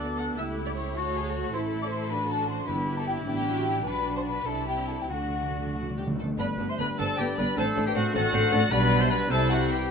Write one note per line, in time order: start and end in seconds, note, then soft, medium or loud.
0.00 0.36 D2 medium
0.00 0.39 B3 medium
0.00 0.37 D4 medium
0.00 0.35 F#4 medium
0.00 0.38 A4 medium
0.00 0.18 D6 medium
0.18 0.26 F#5 medium
0.18 0.38 F#6 medium
0.37 0.94 C#2 medium
0.37 0.94 A3 medium
0.37 0.95 E4 medium
0.37 0.94 G4 medium
0.37 0.46 E5 medium
0.37 0.44 E6 medium
0.66 0.70 D5 medium
0.66 0.71 D6 medium
0.76 0.93 C#5 medium
0.76 0.94 C#6 medium
0.94 1.53 D2 medium
0.94 2.65 A3 medium
0.94 1.53 F#4 medium
0.94 1.15 F#4 medium
0.94 1.51 A4 medium
0.94 1.51 C#5 medium
0.94 1.52 C#6 medium
1.14 1.34 G#4 medium
1.33 1.53 F#4 medium
1.52 2.66 A1 medium
1.52 2.10 E4 medium
1.52 2.11 E4 medium
1.52 2.09 A4 medium
1.52 1.61 C5 medium
1.52 1.59 C6 loud
1.81 1.92 D5 medium
1.81 1.86 D6 medium
1.90 2.10 C5 medium
1.90 2.10 C6 medium
2.10 2.68 D4 medium
2.10 2.67 D4 medium
2.10 2.69 F#4 medium
2.10 2.30 B4 medium
2.10 2.30 B5 loud
2.30 2.49 A4 medium
2.30 2.49 A5 loud
2.49 2.68 C5 medium
2.49 2.68 C6 loud
2.68 3.26 G1 medium
2.68 3.23 G2 medium
2.68 3.25 B3 medium
2.68 3.25 D4 medium
2.68 3.84 E4 medium
2.68 3.26 G4 medium
2.68 2.76 B4 medium
2.68 2.98 B5 loud
2.98 3.07 A4 medium
2.98 3.08 A5 medium
3.07 3.16 G4 medium
3.07 3.13 G5 medium
3.26 3.85 A1 medium
3.26 3.46 B3 medium
3.26 3.85 D4 medium
3.26 3.85 G4 medium
3.26 3.86 G5 loud
3.46 3.66 F#4 medium
3.66 3.86 E4 medium
3.86 4.47 B1 medium
3.86 4.46 D4 medium
3.86 5.08 D4 medium
3.86 4.48 F#4 medium
3.86 4.16 B4 medium
3.86 4.17 B5 loud
4.16 4.20 C5 medium
4.16 4.22 C6 medium
4.26 4.47 B4 medium
4.26 4.47 B5 medium
4.46 5.09 C2 medium
4.46 5.11 C4 medium
4.46 5.10 E4 medium
4.46 5.09 E4 medium
4.46 4.68 A4 medium
4.46 4.69 A5 medium
4.67 4.89 G4 medium
4.67 4.89 G5 medium
4.89 5.00 A4 medium
4.89 5.00 A5 medium
5.01 5.11 G4 medium
5.01 5.11 G5 medium
5.10 6.15 D2 medium
5.10 5.17 D3 soft
5.10 6.18 A3 medium
5.10 6.15 D4 medium
5.10 5.74 F#4 medium
5.10 6.07 F#4 medium
5.10 5.69 F#4 medium
5.10 5.75 F#5 medium
5.18 5.26 D3 soft
5.27 5.34 D3 soft
5.35 5.42 D3 soft
5.43 5.50 D3 soft
5.51 5.58 D3 soft
5.59 5.65 D3 medium
5.67 5.74 D3 soft
5.75 5.82 D3 medium
5.75 5.95 F#4 medium
5.83 5.89 D3 medium
5.91 5.97 D3 medium
5.97 6.06 D3 medium
5.97 6.05 G4 medium
6.07 6.14 D3 medium
6.15 6.22 D3 medium
6.15 6.27 A4 medium
6.23 6.31 D3 medium
6.38 6.47 G1 medium
6.38 6.47 G2 medium
6.38 6.46 D3 medium
6.38 7.54 G3 medium
6.38 6.46 B3 medium
6.38 6.46 D4 medium
6.38 8.69 D4 medium
6.38 6.67 B4 medium
6.38 6.71 B4 medium
6.38 6.46 D5 medium
6.38 6.47 B5 medium
6.58 6.67 G1 medium
6.58 6.67 G2 medium
6.58 6.67 D3 medium
6.58 6.67 B3 medium
6.58 6.66 D4 medium
6.69 6.79 C5 medium
6.69 6.81 C5 medium
6.69 6.74 E5 medium
6.69 6.79 C6 medium
6.78 6.87 G1 medium
6.78 6.88 G2 medium
6.78 6.87 D3 medium
6.78 6.86 B3 medium
6.78 6.87 B3 medium
6.78 6.87 D4 medium
6.78 7.00 B4 medium
6.78 6.89 B4 medium
6.78 6.86 D5 medium
6.78 6.87 B5 loud
6.99 7.07 G1 medium
6.99 7.08 G2 medium
6.99 7.07 D3 medium
6.99 7.07 B3 medium
6.99 7.07 D4 medium
6.99 7.17 A4 medium
6.99 7.20 A4 medium
6.99 7.19 C5 medium
6.99 7.60 D5 medium
6.99 7.19 A5 loud
7.18 7.27 G1 medium
7.18 7.27 G2 medium
7.18 7.27 D3 medium
7.18 7.27 B3 medium
7.18 7.27 D4 medium
7.18 7.27 G4 medium
7.18 7.40 G4 medium
7.18 7.38 B4 medium
7.18 7.39 G5 loud
7.38 7.46 G1 medium
7.38 7.47 G2 medium
7.38 7.46 D3 medium
7.38 7.46 B3 medium
7.38 7.47 D4 medium
7.38 7.57 B4 medium
7.38 7.59 B4 loud
7.38 7.45 D5 loud
7.38 7.57 B5 loud
7.57 7.65 A1 medium
7.57 7.66 A2 medium
7.57 7.65 D3 medium
7.57 7.65 A3 medium
7.57 8.73 A3 medium
7.57 7.65 C4 medium
7.57 7.65 D4 medium
7.57 7.87 A4 loud
7.57 7.86 A4 loud
7.57 7.65 C5 loud
7.57 8.17 C5 medium
7.57 7.67 A5 loud
7.75 7.83 A1 medium
7.75 7.85 A2 medium
7.75 7.84 D3 medium
7.75 7.83 A3 medium
7.75 7.85 C4 medium
7.75 7.84 D4 medium
7.86 7.95 G4 medium
7.86 7.91 G4 medium
7.86 7.96 B4 medium
7.86 7.96 G5 loud
7.94 8.03 A1 medium
7.94 8.04 A2 medium
7.94 8.03 D3 medium
7.94 8.03 A3 medium
7.94 8.02 C4 medium
7.94 8.03 D4 medium
7.94 8.14 F#4 medium
7.94 8.15 F#4 loud
7.94 8.14 A4 loud
7.94 8.04 F#5 loud
8.14 8.22 A1 loud
8.14 8.23 A2 medium
8.14 8.22 D3 medium
8.14 8.22 A3 medium
8.14 8.22 C4 medium
8.14 8.22 D4 medium
8.14 8.74 F#4 loud
8.14 8.71 A4 loud
8.14 8.33 A4 loud
8.14 8.71 F#5 loud
8.32 8.41 A1 loud
8.32 8.41 A2 medium
8.32 8.40 D3 medium
8.32 8.41 A3 medium
8.32 8.40 C4 medium
8.32 8.41 D4 medium
8.32 8.54 C5 loud
8.52 8.60 A1 loud
8.52 8.60 A2 loud
8.52 8.60 D3 medium
8.52 8.60 A3 medium
8.52 8.60 C4 medium
8.52 8.60 D4 medium
8.52 8.71 D5 loud
8.71 9.26 B1 medium
8.71 9.27 B2 loud
8.71 9.27 G3 medium
8.71 9.27 B3 medium
8.71 9.27 D4 medium
8.71 9.00 B4 loud
8.71 9.03 B4 loud
8.71 9.31 D5 loud
8.71 8.78 D5 loud
8.71 9.02 B5 loud
9.01 9.05 C5 loud
9.01 9.12 C5 loud
9.01 9.11 E5 medium
9.01 9.12 C6 loud
9.10 9.33 B4 loud
9.10 9.31 B4 loud
9.10 9.17 D5 loud
9.10 9.19 B5 loud
9.29 9.90 C2 medium
9.29 9.90 C3 medium
9.29 9.90 G3 medium
9.29 9.91 G3 loud
9.29 9.91 C4 medium
9.29 9.91 E4 loud
9.29 9.91 E4 medium
9.29 9.51 A4 loud
9.29 9.50 A4 loud
9.29 9.91 C5 loud
9.29 9.50 C5 loud
9.29 9.51 A5 loud
9.51 9.73 F#4 medium
9.51 9.61 F#4 medium
9.51 9.71 A4 medium
9.51 9.71 F#5 loud
9.71 9.91 G4 medium
9.71 9.81 G4 medium
9.71 9.91 B4 medium
9.71 9.91 G5 medium